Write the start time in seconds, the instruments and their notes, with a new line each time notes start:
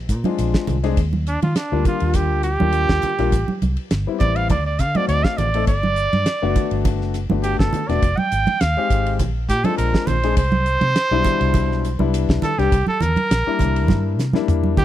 Already playing: fingered electric bass A#1
0.09 fingered electric bass A#2, kick, hi-hat pedal, ride
0.24 grand piano G#3 C4 D4 F4, ride, high conga
0.38 fingered electric bass A#1, hi-hat pedal, ride
0.54 kick, snare
0.67 fingered electric bass C2, hi-hat pedal, ride, low conga
0.83 grand piano G#3 C4 D4 G#4, snare, ride
0.97 fingered electric bass D#2, kick, hi-hat pedal, ride
1.13 high conga
1.27 trumpet D4, hi-hat pedal, ride
1.42 fingered electric bass D#3, trumpet F4, ride, high conga
1.55 trumpet D4, snare, hi-hat pedal, ride
1.72 fingered electric bass D2, grand piano G3 A#3 D4 F4
1.85 trumpet F4, kick, hi-hat pedal, ride, low conga
2.00 fingered electric bass D#2, ride
2.14 trumpet G4, kick, hi-hat pedal, ride, low conga
2.32 fingered electric bass D2
2.43 trumpet G4, hi-hat pedal, ride
2.60 fingered electric bass D#2, grand piano G3 A#3 D4 F4, high conga
2.72 hi-hat pedal, ride
2.89 fingered electric bass D#2, kick, snare
3.02 muted fingered electric bass stroke, hi-hat pedal, ride, low conga
3.18 fingered electric bass A#1, grand piano G3 A#3 D4 F4, snare, ride
3.32 fingered electric bass A1, kick, hi-hat pedal, ride
3.48 high conga
3.62 fingered electric bass C2, hi-hat pedal, ride, high conga
3.77 ride
3.91 fingered electric bass G1, snare, hi-hat pedal, ride
4.07 grand piano G3 B3 C4 E4, muted fingered electric bass stroke
4.20 fingered electric bass A1, trumpet D5, kick, hi-hat pedal, ride, low conga
4.36 trumpet F5, ride
4.49 fingered electric bass D2, trumpet D5, kick, hi-hat pedal, ride, high conga, low conga
4.66 trumpet D5
4.79 fingered electric bass D3, trumpet F5, kick, snare, hi-hat pedal, ride
4.95 grand piano A3 C4 D#4 F#4, trumpet D5, ride, high conga
5.08 fingered electric bass D2, trumpet D5, hi-hat pedal, ride
5.24 trumpet F5, kick, snare
5.37 fingered electric bass A1, trumpet D5, hi-hat pedal, ride, low conga
5.54 grand piano A3 C4 D#4 A4, ride
5.67 fingered electric bass G1, trumpet D5, kick, hi-hat pedal, ride
5.83 high conga
5.96 hi-hat pedal, ride
6.13 fingered electric bass G2, ride, high conga
6.26 snare, hi-hat pedal, ride
6.42 fingered electric bass F#1, grand piano A3 B3 D4 F#4
6.55 kick, hi-hat pedal, ride, low conga
6.71 fingered electric bass G1, ride
6.85 kick, hi-hat pedal, ride, low conga
7.01 fingered electric bass F#1, snare
7.14 snare, hi-hat pedal, ride
7.30 fingered electric bass G1, grand piano A3 B3 D4 F#4, high conga
7.43 trumpet G4, hi-hat pedal, ride
7.59 fingered electric bass G1, trumpet A4, kick, snare
7.73 muted fingered electric bass stroke, hi-hat pedal, ride, low conga
7.88 fingered electric bass E1, grand piano A3 B3 D4 F#4, trumpet D5, snare, ride
8.02 fingered electric bass F1, kick, hi-hat pedal, ride
8.18 trumpet G5, muted fingered electric bass stroke, high conga
8.32 fingered electric bass G#1, hi-hat pedal, ride
8.47 ride, high conga
8.61 fingered electric bass D#2, trumpet F5, snare, hi-hat pedal, ride
8.77 grand piano G#3 C4 D#4 G4, muted fingered electric bass stroke
8.90 fingered electric bass G#1, kick, hi-hat pedal, ride
9.06 ride
9.19 fingered electric bass A#1, kick, hi-hat pedal, ride, low conga
9.49 fingered electric bass A#2, trumpet G4, kick, hi-hat pedal, ride
9.64 grand piano G#3 C4 D4 F4, trumpet A4, ride, high conga
9.77 fingered electric bass A#1, trumpet A#4, hi-hat pedal, ride
9.94 kick, snare
10.07 fingered electric bass A#1, trumpet C5, hi-hat pedal, ride, low conga
10.23 grand piano G#3 C4 D4 G#4, snare, ride
10.37 fingered electric bass C2, trumpet C5, kick, hi-hat pedal, ride
10.52 high conga
10.66 hi-hat pedal, ride
10.81 fingered electric bass C3, ride, high conga
10.96 snare, hi-hat pedal, ride
11.11 fingered electric bass B1, grand piano B2 G3 D4 E4
11.25 kick, hi-hat pedal, ride, low conga
11.41 fingered electric bass C2, ride
11.54 kick, hi-hat pedal, ride, low conga
11.70 fingered electric bass B1, snare
11.85 hi-hat pedal, ride
11.99 fingered electric bass C2, grand piano G3 B3 D4 E4, high conga
12.14 hi-hat pedal, ride
12.29 fingered electric bass C2, kick, snare
12.42 trumpet A4, hi-hat pedal, ride, low conga
12.58 fingered electric bass C2, grand piano G3 B3 D4 G4, trumpet G4, snare, ride
12.72 fingered electric bass C2, kick, hi-hat pedal, ride
12.87 trumpet A4, high conga
13.00 fingered electric bass E2, trumpet A#4, hi-hat pedal, ride, low conga
13.16 ride, high conga
13.31 fingered electric bass A#1, snare, hi-hat pedal, ride
13.47 grand piano G3 A#3 D4 E4
13.59 fingered electric bass C2, kick, hi-hat pedal, ride, low conga
13.76 ride
13.88 fingered electric bass G2, kick, snare, hi-hat pedal, high conga, low conga
14.19 fingered electric bass C3, snare, hi-hat pedal
14.33 grand piano G3 A#3 D4 E4, snare, high conga
14.48 fingered electric bass E2, hi-hat pedal, mid tom
14.63 high conga
14.77 fingered electric bass D2, trumpet G4, kick, hi-hat pedal, low conga